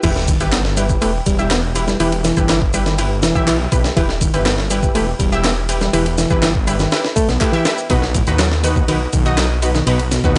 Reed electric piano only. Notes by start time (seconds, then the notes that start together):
0.03 E3
0.28 D#3
0.52 B3
0.77 G3
1.02 A3
1.26 G3
1.51 B3
1.88 G3
2.00 E3
2.25 E3
2.49 E3
2.74 G3
2.86 D#3
3.23 E3
3.47 E3
3.96 E3
4.21 D#3
4.46 B3
4.71 G3
4.95 A3
5.19 G3
5.44 B3
5.81 G3
5.93 E3
6.18 E3
6.43 E3
6.67 G3
6.79 D#3
7.16 A3
7.29 B3
7.41 A3
7.53 E3
7.90 B2
8.15 A2
8.39 F#3
8.64 D#3
8.88 D#3
9.13 D#3
9.37 F#3
9.75 D#3
9.87 B2
10.12 B2